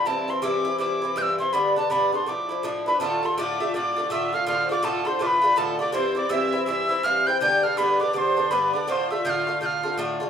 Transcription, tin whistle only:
0.07 0.31 A5 medium
0.30 0.44 C6 medium
0.43 0.79 D6 medium
0.80 1.19 D6 medium
1.18 1.23 G6 medium
1.22 1.39 E6 medium
1.39 1.55 C6 medium
1.53 1.76 B5 medium
1.77 1.93 A5 medium
1.91 2.13 B5 medium
2.14 2.30 C6 medium
2.28 2.64 D6 medium
2.88 3.00 B5 medium
3.02 3.27 A5 medium
3.26 3.38 C6 medium
3.39 3.72 D6 medium
3.75 4.13 D6 medium
4.12 4.36 E6 medium
4.34 4.48 F6 medium
4.48 4.69 F6 loud
4.71 4.86 D6 medium
4.84 5.08 A5 medium
5.07 5.23 C6 medium
5.22 5.28 D6 medium
5.27 5.59 B5 medium
5.58 5.80 A5 medium
5.80 5.93 D6 medium
5.94 6.15 C6 medium
6.16 6.31 D6 medium
6.30 6.67 E6 loud
6.67 7.06 E6 loud
7.04 7.28 F6 medium
7.27 7.40 G6 medium
7.41 7.65 G6 loud
7.63 7.79 F6 loud
7.78 8.02 B5 medium
8.01 8.14 D6 medium
8.14 8.19 D6 medium
8.18 8.52 C6 medium
8.51 8.75 B5 medium
8.74 8.88 D6 medium
8.88 9.12 C6 medium
8.88 8.93 D6 medium
9.11 9.24 E6 medium
9.25 9.31 G6 medium
9.30 9.59 F6 medium
9.61 9.67 G6 medium
9.66 9.96 F6 medium

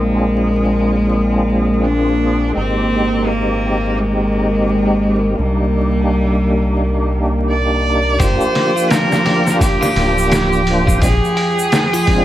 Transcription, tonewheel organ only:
0.00 2.50 C4 medium
0.00 2.51 D4 medium
0.00 2.53 F4 medium
0.00 2.54 G#4 medium
2.53 5.33 G#3 medium
2.53 5.34 C4 medium
2.58 5.35 D#4 medium
2.58 5.37 G4 medium
5.36 8.16 A#3 medium
5.36 8.17 D4 medium
5.40 8.18 D#4 medium
5.40 8.19 G4 medium
8.18 9.21 A#3 medium
8.18 9.22 D4 medium
8.22 9.24 F4 medium
8.22 9.25 G4 medium
9.23 10.62 A#3 medium
9.23 10.64 D4 medium
9.28 10.65 F4 medium
9.28 10.66 G4 medium
10.66 10.99 A#3 medium
10.66 10.99 D4 medium
10.66 11.00 F4 medium
10.66 11.01 C5 medium
11.01 11.13 G#3 medium
11.01 11.14 C4 medium
11.01 11.14 D4 medium
11.01 11.15 F4 medium
12.06 12.25 G#3 loud
12.06 12.25 C4 medium
12.10 12.25 D4 medium
12.10 12.25 F4 loud

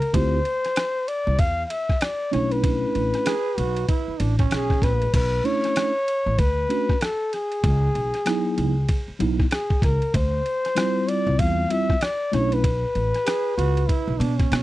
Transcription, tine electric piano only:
0.13 0.37 C4 medium
0.13 0.38 E4 medium
0.13 0.38 F4 medium
0.13 0.38 G4 medium
2.31 3.33 A3 medium
2.31 3.33 C#4 medium
2.31 3.34 D4 medium
2.31 3.34 E4 medium
5.44 5.91 A3 medium
5.44 5.91 C#4 medium
5.44 5.91 D4 medium
5.44 5.92 E4 medium
6.69 6.93 A3 medium
6.69 6.94 C#4 medium
6.69 6.94 D4 medium
6.69 6.94 F#4 medium
8.26 8.72 F#3 medium
8.26 8.73 B3 medium
8.26 8.73 D#4 medium
8.26 8.73 E4 medium
9.19 9.44 F#3 medium
9.19 9.44 B3 medium
9.19 9.44 D#4 medium
9.19 9.44 E4 medium
10.75 11.65 G3 medium
10.75 11.65 C4 medium
10.75 11.65 E4 medium
10.75 11.65 F4 medium
11.69 11.94 G3 medium
11.69 11.94 C4 medium
11.69 11.94 E4 medium
11.69 11.94 F4 medium
12.32 12.63 A3 medium
12.32 12.64 C#4 medium
12.32 12.64 D4 medium
12.32 12.64 E4 medium

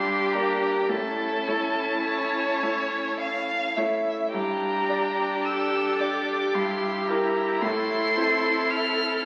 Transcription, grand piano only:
0.00 0.32 G2 medium
0.34 0.86 A#3 soft
0.34 0.86 G4 soft
0.34 0.86 D5 soft
0.89 1.45 A2 soft
1.48 2.59 A3 soft
1.48 2.59 E4 soft
1.48 2.60 C#5 soft
2.63 3.74 A3 soft
2.63 3.74 E4 soft
2.63 3.74 C#5 soft
3.77 4.30 A3 soft
3.77 4.30 E4 soft
3.77 4.30 C#5 soft
4.34 4.88 G2 soft
4.89 5.96 D4 soft
4.89 5.96 G4 soft
4.89 5.97 D5 soft
6.00 6.50 D4 soft
6.00 6.51 G4 soft
6.00 6.51 D5 soft
6.54 7.07 G2 medium
7.08 7.59 E4 soft
7.08 7.59 G4 soft
7.08 7.59 A#4 soft
7.62 8.15 A2 medium
8.17 9.22 C4 medium
8.17 9.22 E4 soft
8.17 9.22 A4 medium

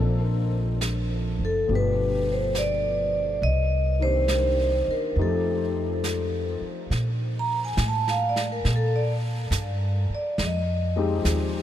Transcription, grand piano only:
0.00 1.66 F3 soft
0.00 1.68 A#3 soft
0.00 1.69 C4 soft
0.00 1.69 D4 soft
0.00 1.70 A4 soft
1.67 3.43 B2 soft
1.67 3.41 F3 soft
1.67 3.42 A3 soft
1.67 3.43 D4 soft
1.72 3.44 G4 soft
3.99 5.15 D#3 soft
3.99 5.16 A#3 soft
3.99 5.17 C4 soft
3.99 5.17 D4 soft
4.04 5.18 G4 soft
5.18 6.91 F3 soft
5.18 6.91 A3 soft
5.18 6.91 C4 soft
5.18 6.92 D#4 soft
5.18 6.92 G4 medium
10.96 11.22 F3 medium
10.96 11.22 G#3 medium
10.96 11.22 C4 medium
10.96 11.23 D#4 soft
10.96 11.23 G4 medium

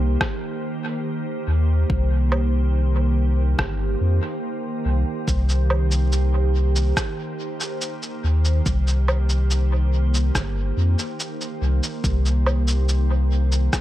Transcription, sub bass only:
0.00 0.17 C2 medium
1.48 1.85 D#2 medium
1.90 3.55 C2 loud
3.59 3.96 G1 medium
4.01 4.20 F2 medium
4.85 5.04 C2 medium
5.28 6.93 C2 loud
8.24 8.61 D#2 medium
8.66 10.31 C2 medium
10.35 10.72 G1 medium
10.77 10.96 F2 medium
11.62 11.80 C2 medium
12.04 13.69 C2 medium

